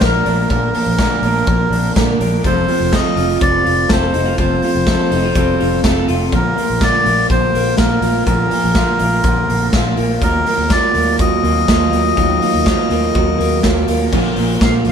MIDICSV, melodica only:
0, 0, Header, 1, 2, 480
1, 0, Start_track
1, 0, Key_signature, -2, "major"
1, 0, Tempo, 486618
1, 495, Time_signature, 4, 2, 24, 8
1, 14716, End_track
2, 0, Start_track
2, 0, Title_t, "Melodica"
2, 0, Program_c, 0, 22
2, 20, Note_on_c, 0, 70, 87
2, 481, Note_off_c, 0, 70, 0
2, 495, Note_on_c, 0, 70, 78
2, 1893, Note_off_c, 0, 70, 0
2, 2424, Note_on_c, 0, 72, 86
2, 2895, Note_on_c, 0, 75, 96
2, 2910, Note_off_c, 0, 72, 0
2, 3337, Note_off_c, 0, 75, 0
2, 3370, Note_on_c, 0, 74, 98
2, 3860, Note_on_c, 0, 72, 85
2, 3861, Note_off_c, 0, 74, 0
2, 4298, Note_off_c, 0, 72, 0
2, 4338, Note_on_c, 0, 72, 81
2, 5726, Note_off_c, 0, 72, 0
2, 6259, Note_on_c, 0, 70, 81
2, 6735, Note_on_c, 0, 74, 99
2, 6741, Note_off_c, 0, 70, 0
2, 7172, Note_off_c, 0, 74, 0
2, 7210, Note_on_c, 0, 72, 92
2, 7649, Note_off_c, 0, 72, 0
2, 7681, Note_on_c, 0, 70, 79
2, 8129, Note_off_c, 0, 70, 0
2, 8144, Note_on_c, 0, 70, 81
2, 9550, Note_off_c, 0, 70, 0
2, 10086, Note_on_c, 0, 70, 85
2, 10566, Note_on_c, 0, 74, 96
2, 10577, Note_off_c, 0, 70, 0
2, 11010, Note_off_c, 0, 74, 0
2, 11052, Note_on_c, 0, 75, 98
2, 13417, Note_off_c, 0, 75, 0
2, 14437, Note_on_c, 0, 77, 91
2, 14540, Note_off_c, 0, 77, 0
2, 14686, Note_on_c, 0, 77, 99
2, 14716, Note_off_c, 0, 77, 0
2, 14716, End_track
0, 0, End_of_file